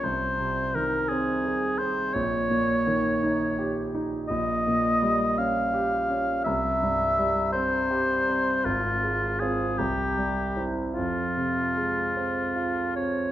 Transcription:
X:1
M:6/8
L:1/8
Q:3/8=55
K:Ebmix
V:1 name="Oboe"
c2 B A2 c | d4- d z | [K:Fm] e3 f3 | =e3 c3 |
F2 A G2 z | F4- F d |]
V:2 name="Grand piano"
C,, C, E, C A C | B,,, B,, E, E G E | [K:Fm] B,,, B,, G, D G D | C,, G,, G, C G C |
A,,, A, [CF] C,, G, [C=E] | F,, C, A, C F C |]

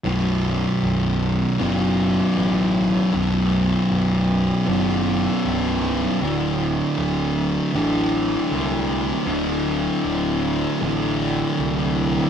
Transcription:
X:1
M:4/4
L:1/8
Q:1/4=78
K:Bphr
V:1 name="Distorted electric guitar" clef=bass
[B,,,F,,B,,]4 [B,,,F,,B,,]4 | [B,,,F,,B,,]4 [B,,,F,,B,,]4 | [D,,A,,D,]4 [D,,A,,D,]4 | [D,,A,,D,]4 [D,,A,,D,]4 |]
V:2 name="Picked electric bass" clef=bass
B,,,,2 B,,,,2 F,,,2 A,,,2 | B,,,,2 B,,,,2 F,,,2 C,,,2 | D,,,2 D,,,2 A,,,2 C,,2 | D,,,2 D,,,2 A,,,2 C,,2 |]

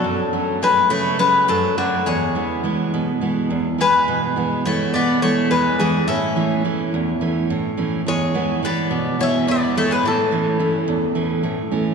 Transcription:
X:1
M:7/8
L:1/16
Q:1/4=105
K:A
V:1 name="Bouzouki"
A4 B2 c2 B2 A2 F2 | c4 z8 B2- | B4 c2 d2 c2 B2 G2 | e4 z8 z2 |
c4 d4 e2 d2 c B | A8- A2 z4 |]
V:2 name="Bouzouki" clef=bass
F,4 G,2 A,2 G,2 F,2 D,2 | G,4 z8 G,2- | G,4 A,2 B,2 A,2 G,2 E,2 | C4 z8 z2 |
G,4 B,4 C2 B,2 A, G, | E,8- E,2 z4 |]
V:3 name="Steel-string acoustic guitar" clef=bass
F,,2 [F,A,C]2 [F,A,C]2 C,2 [F,A,C]2 F,,2 [F,A,C]2 | E,,2 [E,G,B,]2 [E,G,B,]2 B,,2 [E,G,B,]2 E,,2 [E,G,B,]2 | B,,2 [E,G,B,]2 [E,G,B,]2 B,,2 [E,G,B,]2 E,,2 [E,G,B,]2 | A,,2 [E,A,C]2 [E,A,C]2 E,,2 [E,A,C]2 A,,2 [E,A,C]2 |
E,,2 [E,G,B,]2 [E,G,B,]2 B,,2 [E,G,B,]2 E,,2 [E,G,B,]2 | A,,2 [E,A,C]2 [E,A,C]2 E,,2 [E,A,C]2 A,,2 [E,A,C]2 |]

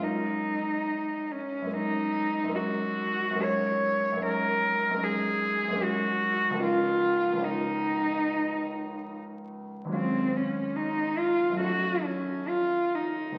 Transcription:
X:1
M:4/4
L:1/8
Q:1/4=72
K:Abmix
V:1 name="Cello"
E3 D E2 G2 | d2 B2 A2 G2 | F2 E4 z2 | C D E F G D F E |]
V:2 name="Grand piano"
[G,,A,B,DE]4 [G,,A,B,DE]2 [G,,A,B,DE]2 | [G,,A,B,DE]2 [G,,A,B,DE]2 [G,,A,B,DE]2 [G,,A,B,DE]2 | [D,,F,B,DE]2 [D,,F,B,DE]6 | [E,,G,A,DF]4 [G,,G,=A,DE]4 |]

